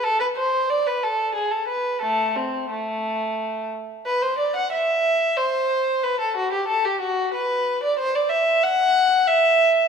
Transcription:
\new Staff \with { instrumentName = "Violin" } { \time 3/4 \key a \minor \tempo 4 = 92 a'16 b'16 c''8 d''16 b'16 a'8 gis'16 a'16 b'8 | <a a'>8 c'8 a4. r8 | \key e \minor b'16 c''16 d''16 fis''16 e''4 c''4 | b'16 a'16 fis'16 g'16 a'16 g'16 fis'8 b'8. d''16 |
c''16 d''16 e''8 fis''4 e''4 | }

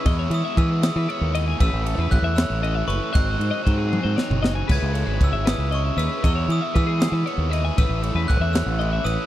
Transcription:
<<
  \new Staff \with { instrumentName = "Glockenspiel" } { \time 6/8 \key e \major \tempo 4. = 78 e'''8 dis'''8 e'''8 dis'''4 r8 | e'''4 fis'''8 e'''4 cis'''8 | fis'''4. r4. | gis'''4 e'''8 dis'''8 cis'''8 e'''8 |
e'''8 dis'''8 e'''8 dis'''4 r8 | e'''4 fis'''8 e'''4 dis'''8 | }
  \new Staff \with { instrumentName = "Clean electric guitar" } { \time 6/8 \key e \major dis''16 cis''8 e''16 b'16 gis'8 b'16 cis''8 dis''16 gis''16 | b'8 a'16 b'8 e''16 cis''8 dis''16 e''16 b'8 | dis''16 bis'8 dis''16 bis'16 gis'8 bis'16 cis''8 dis''16 gis''16 | b'8 a'16 b'8 e''16 b'8 dis''16 e''16 b'8 |
dis''16 cis''8 e''16 b'16 gis'8 b'16 cis''8 dis''16 gis''16 | b'8 a'16 b'8 e''16 cis''8 dis''16 e''16 b'8 | }
  \new Staff \with { instrumentName = "Overdriven electric guitar" } { \time 6/8 \key e \major <e gis b e'>8 <gis b e'>8 <e gis b e'>8 <gis b e'>8 <e gis b e'>8 <gis b e'>8 | <a, e a cis' e'>8 <a cis' e'>8 <e a cis' e'>8 <a cis' e'>8 <e a cis' e'>8 <a cis' e'>8 | <gis, dis fis bis dis'>8 <fis bis dis'>8 <dis fis bis dis'>8 <fis bis dis'>8 <dis fis bis dis'>8 <fis bis dis'>8 | <cis gis cis' e'>8 <gis cis' e'>8 <cis gis cis' e'>8 <gis cis' e'>8 <cis gis cis' e'>8 <gis cis' e'>8 |
<e gis b e'>8 <gis b e'>8 <e gis b e'>8 <gis b e'>8 <e gis b e'>8 <gis b e'>8 | <a, e a cis' e'>8 <a cis' e'>8 <e a cis' e'>8 <a cis' e'>8 <e a cis' e'>8 <a cis' e'>8 | }
  \new Staff \with { instrumentName = "Fingered electric bass" } { \clef bass \time 6/8 \key e \major e,8 e16 r16 e8. e16 r16 dis,8. | a,,16 a,,8 e,16 a,,16 e,8 a,,8. fis,,16 r16 | gis,,8 gis,16 r16 gis,8. gis,16 r16 fis,,8. | cis,16 cis,8 gis,,16 cis,16 gis,,8 cis,8. dis,16 r16 |
e,8 e16 r16 e8. e16 r16 dis,8. | a,,16 a,,8 e,16 a,,16 e,8 a,,8. a,,16 r16 | }
  \new DrumStaff \with { instrumentName = "Drums" } \drummode { \time 6/8 <bd cymr>8 cymr8 <bd cymr>8 <cymr sn>8 cymr8 cymr8 | <bd cymr>8 cymr8 <bd cymr>8 <cymr sn>8 cymr8 cymr8 | <bd cymr>8 cymr8 <bd cymr>8 tommh8 sn16 toml16 sn8 | <cymc bd>8 cymr8 <bd cymr>8 <cymr sn>8 cymr8 cymr8 |
<bd cymr>8 cymr8 <bd cymr>8 <cymr sn>8 cymr8 cymr8 | <bd cymr>8 cymr8 <bd cymr>8 <cymr sn>8 cymr8 cymr8 | }
>>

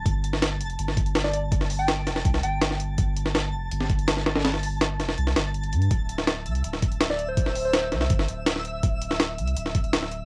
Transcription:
<<
  \new Staff \with { instrumentName = "Synth texture" } { \time 4/4 \key g \dorian \tempo 4 = 164 <a'' a'''>1~ | <a'' a'''>1~ | <a'' a'''>1~ | <a'' a'''>1 |
<e'' e'''>1~ | <e'' e'''>1~ | <e'' e'''>1 | }
  \new Staff \with { instrumentName = "Soft synth lead" } { \time 4/4 \key g \dorian r2. r16 d''16 d''16 r16 | r8. g''4. r16 g''8. r8. | r1 | r1 |
r2. r16 d''16 d''16 c''16~ | c''8. c''4 r2 r16 | r1 | }
  \new Staff \with { instrumentName = "Sub bass" } { \clef bass \time 4/4 \key g \dorian g,,4. f,,8 g,,2~ | g,,4. f,,8 c,8 g,,4. | g,,4. f,,8 g,,2~ | g,,4. f,,8 c,8 g,,4 g,8 |
d,,4. c,8 d,,2~ | d,,4. c,8 g,,8 d,,4. | d,,4. c,8 d,,2 | }
  \new DrumStaff \with { instrumentName = "Drums" } \drummode { \time 4/4 <hh bd>8 hh16 sn16 <hh sn>8 hh16 hh16 hh16 sn16 <hh bd>16 hh16 <hh sn>16 sn16 hh8 | <hh bd>16 sn16 hho8 <hh sn>8 <hh sn>16 sn16 <hh bd>16 sn16 hh8 <hh sn>16 sn16 hh8 | <hh bd>8 hh16 sn16 <hh sn>4 hh16 sn16 <hh bd>16 hh16 <hh sn>16 sn16 <hh sn>16 <hh sn>16 | <hh sn>16 sn16 hho8 <hh sn>8 <hh sn>16 sn16 hh16 sn16 <hh sn>8 hh16 hh16 hh16 hh16 |
<hh bd>8 hh16 sn16 <hh sn>8 hh16 hh16 hh16 sn16 <hh bd>16 hh16 <hh sn>16 sn16 hh8 | <hh bd>16 sn16 hho8 <hh sn>8 <hh sn>16 sn16 <hh bd>16 sn16 hh8 <hh sn>16 sn16 hh8 | <hh bd>8 hh16 sn16 <hh sn>8 hh16 hh16 hh16 sn16 <hh bd>16 hh16 <hh sn>16 sn16 hh8 | }
>>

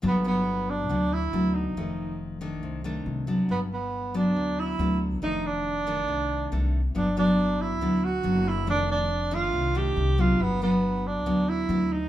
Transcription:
<<
  \new Staff \with { instrumentName = "Tenor saxophone" } { \time 4/4 \key g \major \tempo 4 = 139 b8 b4 d'4 e'4 ees'8~ | ees'4 r2. | b8 b4 d'4 e'4 r8 | ees'8 d'2. r8 |
d'8 d'4 e'4 fis'4 e'8 | d'8 d'4 f'4 g'4 f'8 | b8 b4 d'4 e'4 ees'8 | }
  \new Staff \with { instrumentName = "Nylon-string guitar" } { \time 4/4 \key g \major << { <fis b d'>8 <fis b d'>4. <fis b d'>8 r8 <fis b d'>4 | <ees a>4. <ees a d'>4 <ees a d'>4 <fis b d'>8~ | <fis b d'>8 r4 <fis b d'>4. <fis b d'>4 | <ees a d'>4. <ees a d'>4. <ees a d'>8 r8 |
<fis b d'>8 <fis b d'>4. <fis b d'>8 r8 <fis b d'>8 r8 | <ees a d'>4 r8 <ees a d'>4 <ees a d'>4 <fis b d'>8~ | <fis b d'>8 <fis b d'>4. <fis b d'>4 <fis b d'>8 r8 | } \\ { g,2 d2 | f,2 c2 | g,2 d2 | f,2 c2 |
g,2 d2 | f,2 c2 | g,2 d2 | } >> }
  \new Staff \with { instrumentName = "Upright bass" } { \clef bass \time 4/4 \key g \major g,,2 d,4 d,4 | f,,2 c,4 c,4 | g,,2 d,4 d,4 | f,,2 c,4 c,4 |
g,,2 d,4 fis,,4 | f,,2 c,4 c,4 | g,,2 d,4 d,4 | }
>>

